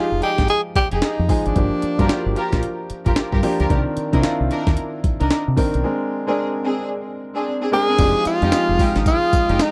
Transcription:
Already playing: grand piano F3 G#3 D#4 G4 G#4, tenor saxophone F4
0.12 fingered electric bass F1
0.21 string section D#4 G4 G#4, tenor saxophone G4, closed hi-hat
0.38 fingered electric bass G#1, kick, snare, closed hi-hat
0.48 tenor saxophone G#4, closed hi-hat
0.76 tenor saxophone G4, muted fingered electric bass stroke, kick, closed hi-hat
0.92 fingered electric bass F1, string section D#4 G4 G#4, closed hi-hat
1.02 tenor saxophone D#4, snare, closed hi-hat
1.19 fingered electric bass F2
1.29 grand piano F3 G#3 D#4 G#4, kick, open hi-hat
1.46 fingered electric bass G#1, tenor saxophone D4, closed hi-hat
1.56 fingered electric bass G1, grand piano F3 A#3 D4 G4, kick, closed hi-hat
1.82 muted fingered electric bass stroke, closed hi-hat
1.99 fingered electric bass G2, grand piano F3 A#3 D4 F#4, string section F4 G4 A#4, kick, closed hi-hat
2.06 grand piano G4, snare, closed hi-hat
2.10 muted fingered electric bass stroke
2.26 fingered electric bass G1
2.36 string section F4 G4 A#4, closed hi-hat
2.52 fingered electric bass A#1, kick, snare, closed hi-hat
2.63 closed hi-hat
2.90 muted fingered electric bass stroke, closed hi-hat
3.06 fingered electric bass G1, string section F4 G4 A#4, kick, closed hi-hat
3.16 snare, closed hi-hat
3.32 fingered electric bass G2, string section F4 G4 A#4, kick
3.43 grand piano F3 A#3 D4 G4, open hi-hat
3.59 fingered electric bass C#2, string section F4 G4 A#4, closed hi-hat
3.70 fingered electric bass C2, grand piano D#3 C4 D4 A#4, kick, closed hi-hat
3.97 muted fingered electric bass stroke, closed hi-hat
4.13 fingered electric bass C3, grand piano D#3 C4 D4 E4, string section D4 D#4 A#4, kick, closed hi-hat
4.20 grand piano F4, snare, closed hi-hat
4.24 muted fingered electric bass stroke
4.40 fingered electric bass C2
4.50 string section D4 D#4 A#4, closed hi-hat
4.67 fingered electric bass D#2, kick, snare, closed hi-hat
4.77 closed hi-hat
5.04 muted fingered electric bass stroke, kick, closed hi-hat
5.20 fingered electric bass C2, string section D4 D#4 A#4, closed hi-hat
5.31 snare, closed hi-hat
5.48 fingered electric bass C3
5.57 grand piano D#3 C4 D4 A#4, kick, open hi-hat
5.74 fingered electric bass B1, closed hi-hat
5.84 grand piano G#3 C4 D4 A#4
6.27 grand piano G#3 C4 D4 A#4, string section C4 D4 G#4
6.64 string section C4 D4 G#4
7.35 string section C4 D4 G#4
7.61 string section C4 D4 G#4
7.72 grand piano G#3 C4 D4 A#4, tenor saxophone G#4
7.88 string section C4 D4 G#4
7.98 fingered electric bass F1, grand piano F3 G#3 C4 D#4 G4, analog synth pad G#3 F5 G5 D#6, kick, closed hi-hat, crash, tambourine
8.25 tenor saxophone F4, muted fingered electric bass stroke, closed hi-hat, tambourine
8.41 fingered electric bass F2, grand piano F3 G#3 C4 D#4 G4, string section G#3 D#4 G4, closed hi-hat
8.52 muted fingered electric bass stroke, snare, closed hi-hat, tambourine
8.69 fingered electric bass F1
8.79 string section G#3 D#4 G4, kick, open hi-hat, tambourine
8.96 fingered electric bass G#1, snare, closed hi-hat
9.06 tenor saxophone F4, kick, closed hi-hat, tambourine
9.33 muted fingered electric bass stroke, kick, closed hi-hat, tambourine
9.49 fingered electric bass F1, string section G#3 D#4 G4, closed hi-hat
9.59 tenor saxophone D#4, snare, closed hi-hat, tambourine

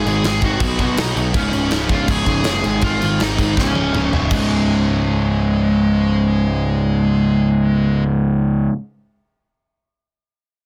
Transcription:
Already playing: lead electric guitar G#4
0.05 picked electric bass G#1, overdriven electric guitar G#2 D#3 G#3, crash
0.23 picked electric bass G#1, overdriven electric guitar G#2 D#3 G#3, lead electric guitar G#4, snare, crash
0.42 overdriven electric guitar G#2 D#3 G#3, lead electric guitar F#4, kick, crash
0.60 picked electric bass B1, overdriven electric guitar B2 F#3 B3, kick, crash
0.79 picked electric bass B1, overdriven electric guitar B2 F#3 B3, kick, crash
0.97 picked electric bass B1, overdriven electric guitar B2 F#3 B3, lead electric guitar D#4, snare, crash
1.15 picked electric bass B1, overdriven electric guitar B2 F#3 B3, crash
1.33 picked electric bass C#1, overdriven electric guitar C#2 G#2 C#3, lead electric guitar C#4, kick, crash
1.52 picked electric bass C#1, overdriven electric guitar C#2 G#2 C#3, crash
1.70 picked electric bass C#1, overdriven electric guitar C#2 G#2 C#3, snare, crash
1.89 picked electric bass C#1, overdriven electric guitar C#2 G#2 C#3, lead electric guitar F4, kick, crash
2.07 picked electric bass C#1, overdriven electric guitar C#2 G#2 C#3, lead electric guitar G#4, kick, crash
2.26 picked electric bass C#1, overdriven electric guitar C#2 G#2 C#3, kick, crash
2.44 picked electric bass F#1, overdriven electric guitar C#2 G#2 C#3, snare, crash
2.50 lead electric guitar G#4
2.64 picked electric bass G#1, overdriven electric guitar G#2 D#3 G#3, crash
2.81 picked electric bass G#1, overdriven electric guitar G#2 D#3 G#3, lead electric guitar F4, kick, crash
3.02 picked electric bass G#1, overdriven electric guitar G#2 D#3 G#3, crash
3.20 picked electric bass G#1, overdriven electric guitar G#2 D#3 G#3, lead electric guitar D#4, snare, crash
3.38 overdriven electric guitar G#2 D#3 G#3, kick, crash
3.57 picked electric bass C#1, overdriven electric guitar C#2 G#2 C#3, lead electric guitar C#4, kick, snare
3.74 picked electric bass C#1, overdriven electric guitar C#2 G#2 C#3, high tom
3.93 picked electric bass C#1, overdriven electric guitar C#2 G#2 C#3, mid tom
4.12 picked electric bass C#1, overdriven electric guitar C#2 G#2 C#3, floor tom
4.30 picked electric bass C#1, overdriven electric guitar C#2 G#2 C#3, lead electric guitar G#3, kick, crash

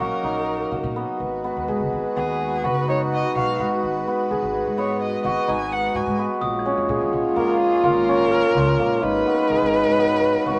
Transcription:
Already playing: string section F#3 C#4 D#4, hammered dulcimer A#3 C#4
0.00 hammered dulcimer F#4, violin A#4
0.23 upright bass A#1, hammered dulcimer D#4
0.71 upright bass A#2, hammered dulcimer F#4
0.83 upright bass A#2
0.96 hammered dulcimer B3
1.19 upright bass G#1, string section G#3 F#4 B4, french horn F#4
1.44 hammered dulcimer B3
1.56 upright bass D#2
1.68 upright bass G#2, hammered dulcimer G#4
1.80 upright bass F#1
1.92 upright bass G#1
2.16 upright bass D#2, hammered dulcimer B3, violin G#4
2.64 upright bass F#1, hammered dulcimer F#4, violin B4
2.88 hammered dulcimer D#4, violin C#5
3.14 violin D#5
3.35 upright bass B1, hammered dulcimer F#4, violin F5
3.58 upright bass G#2, hammered dulcimer B3
3.83 upright bass G#1
4.07 hammered dulcimer B3
4.31 upright bass G#1, hammered dulcimer G#4
4.42 upright bass G#1
4.66 upright bass G#2
4.78 hammered dulcimer B3, violin C#5
5.02 violin D#5
5.24 upright bass G#1, hammered dulcimer F#4, violin D#5
5.48 upright bass G#1, hammered dulcimer D#4, violin G#5
5.72 violin F#5
5.94 upright bass G#2, hammered dulcimer F#4, violin G#5
6.06 upright bass G#2
6.18 hammered dulcimer B3
6.41 upright bass A#1, string section A#3 C#4, french horn F4, glockenspiel D#6
6.59 glockenspiel G#6
6.65 hammered dulcimer C#4
6.77 upright bass F2
6.89 upright bass A#2, hammered dulcimer G#4
7.01 upright bass G#1
7.13 upright bass A#1
7.36 upright bass F2, hammered dulcimer A#3, violin A#4
7.60 violin G#4
7.83 upright bass G#1, hammered dulcimer F4, violin A#4
8.08 hammered dulcimer C#4
8.31 glockenspiel F6
8.55 upright bass C#2, hammered dulcimer F4
8.78 upright bass A#2, hammered dulcimer A#3
9.02 upright bass G#1, french horn D#4, string section F#4 B4, violin B4
9.27 hammered dulcimer B3
9.50 upright bass G#1, hammered dulcimer G#4
9.62 upright bass G#1
9.86 upright bass G#2
9.98 hammered dulcimer B3
10.46 upright bass G#1, hammered dulcimer F#4

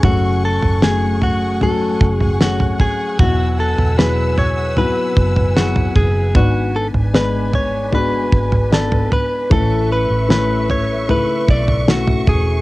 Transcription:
Already playing: string section C#6
0.03 fingered electric bass F#1, upright piano C#3 F#3 A3 C#4 A4, string section A3 F#5 G#5, clean electric guitar F#4, kick, floor tom
0.45 clean electric guitar A4
0.63 fingered electric bass F#1, floor tom
0.83 upright piano F#3 A3 C#4 G#4, clean electric guitar G#4, snare
1.22 clean electric guitar F#4, floor tom
1.61 upright piano F#3 A3 C#4 F#4, clean electric guitar A4, floor tom
2.01 fingered electric bass F#1, kick
2.14 clean electric guitar G#4
2.21 floor tom
2.40 upright piano F#3 A3 C#4 G#4, clean electric guitar F#4, snare
2.60 floor tom
2.80 clean electric guitar G#4, kick, floor tom
3.19 fingered electric bass E1, upright piano B2 F#3 B3 E4 F#4, clean electric guitar F#4, string section B4 E6, kick, floor tom
3.60 clean electric guitar A4
3.78 fingered electric bass E1, floor tom
3.98 upright piano F#3 B3 E4 G#4, clean electric guitar B4, snare
4.38 clean electric guitar C#5, floor tom
4.77 upright piano F#3 B3 E4 F#4, clean electric guitar B4, floor tom
5.17 fingered electric bass F#1, kick
5.36 floor tom
5.56 upright piano F#3 B3 E4 G#4, clean electric guitar F#4, snare
5.76 floor tom
5.96 fingered electric bass F#1, clean electric guitar G#4, kick, floor tom
6.35 fingered electric bass G#1, upright piano G#2 B3 D4 B4, string section D4 B4 G#5, clean electric guitar F#4, kick, floor tom
6.76 clean electric guitar A4
6.94 fingered electric bass G#1, floor tom
7.13 upright piano G#3 B3 D4 B4, clean electric guitar B4, snare
7.53 clean electric guitar C#5, floor tom
7.92 upright piano G#3 B3 D4 F#4, clean electric guitar B4, floor tom
8.32 fingered electric bass G#1, kick
8.52 floor tom
8.71 upright piano B3 D4 D5, clean electric guitar A4, snare
8.92 floor tom
9.12 clean electric guitar B4, floor tom
9.50 fingered electric bass A1, upright piano A2 E3 A3 C#4 E4 B4, clean electric guitar A4, string section E5 C#6, kick, floor tom
9.92 clean electric guitar B4
10.10 fingered electric bass A1
10.29 upright piano A3 C#4 E4 B4, clean electric guitar B4, snare
10.70 clean electric guitar C#5, floor tom
11.08 upright piano C#3 A3 E4 B4, clean electric guitar B4, floor tom
11.48 fingered electric bass B1, clean electric guitar D5, kick
11.68 floor tom
11.88 upright piano A3 C#4 E4 F#4, clean electric guitar F#4, snare
12.07 floor tom
12.27 fingered electric bass E1, clean electric guitar G#4, kick, floor tom

